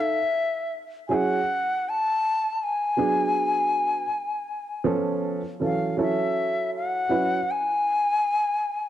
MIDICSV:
0, 0, Header, 1, 3, 480
1, 0, Start_track
1, 0, Key_signature, 4, "major"
1, 0, Tempo, 750000
1, 1905, Time_signature, 4, 2, 24, 8
1, 5691, End_track
2, 0, Start_track
2, 0, Title_t, "Bansuri"
2, 0, Program_c, 0, 73
2, 2, Note_on_c, 0, 76, 89
2, 474, Note_off_c, 0, 76, 0
2, 692, Note_on_c, 0, 80, 74
2, 729, Note_on_c, 0, 78, 106
2, 739, Note_off_c, 0, 80, 0
2, 1210, Note_on_c, 0, 81, 109
2, 1219, Note_off_c, 0, 78, 0
2, 1686, Note_on_c, 0, 80, 97
2, 1696, Note_off_c, 0, 81, 0
2, 3115, Note_off_c, 0, 80, 0
2, 3611, Note_on_c, 0, 77, 83
2, 3822, Note_off_c, 0, 77, 0
2, 3853, Note_on_c, 0, 76, 81
2, 4293, Note_off_c, 0, 76, 0
2, 4332, Note_on_c, 0, 78, 95
2, 4807, Note_on_c, 0, 80, 107
2, 4817, Note_off_c, 0, 78, 0
2, 5691, Note_off_c, 0, 80, 0
2, 5691, End_track
3, 0, Start_track
3, 0, Title_t, "Upright piano"
3, 0, Program_c, 1, 0
3, 0, Note_on_c, 1, 63, 45
3, 0, Note_on_c, 1, 69, 64
3, 115, Note_off_c, 1, 69, 0
3, 118, Note_off_c, 1, 63, 0
3, 698, Note_on_c, 1, 54, 75
3, 703, Note_on_c, 1, 61, 67
3, 708, Note_on_c, 1, 64, 65
3, 712, Note_on_c, 1, 68, 82
3, 881, Note_off_c, 1, 54, 0
3, 884, Note_off_c, 1, 61, 0
3, 886, Note_off_c, 1, 64, 0
3, 888, Note_off_c, 1, 68, 0
3, 1899, Note_on_c, 1, 54, 65
3, 1903, Note_on_c, 1, 59, 58
3, 1909, Note_on_c, 1, 62, 65
3, 1914, Note_on_c, 1, 68, 71
3, 2582, Note_off_c, 1, 54, 0
3, 2584, Note_off_c, 1, 59, 0
3, 2587, Note_off_c, 1, 62, 0
3, 2589, Note_off_c, 1, 68, 0
3, 3099, Note_on_c, 1, 53, 76
3, 3104, Note_on_c, 1, 59, 69
3, 3107, Note_on_c, 1, 61, 70
3, 3113, Note_on_c, 1, 69, 80
3, 3454, Note_off_c, 1, 53, 0
3, 3456, Note_off_c, 1, 59, 0
3, 3458, Note_off_c, 1, 61, 0
3, 3461, Note_off_c, 1, 69, 0
3, 3583, Note_on_c, 1, 54, 53
3, 3587, Note_on_c, 1, 61, 52
3, 3590, Note_on_c, 1, 52, 51
3, 3595, Note_on_c, 1, 69, 61
3, 3810, Note_off_c, 1, 54, 0
3, 3816, Note_off_c, 1, 61, 0
3, 3819, Note_on_c, 1, 54, 69
3, 3824, Note_off_c, 1, 69, 0
3, 3826, Note_on_c, 1, 61, 67
3, 3829, Note_on_c, 1, 64, 60
3, 3833, Note_on_c, 1, 69, 69
3, 3940, Note_off_c, 1, 52, 0
3, 4502, Note_off_c, 1, 54, 0
3, 4505, Note_off_c, 1, 61, 0
3, 4507, Note_off_c, 1, 64, 0
3, 4509, Note_off_c, 1, 69, 0
3, 4539, Note_on_c, 1, 54, 65
3, 4543, Note_on_c, 1, 61, 62
3, 4545, Note_on_c, 1, 64, 64
3, 4550, Note_on_c, 1, 71, 74
3, 4722, Note_off_c, 1, 54, 0
3, 4724, Note_off_c, 1, 61, 0
3, 4725, Note_off_c, 1, 64, 0
3, 4727, Note_off_c, 1, 71, 0
3, 5691, End_track
0, 0, End_of_file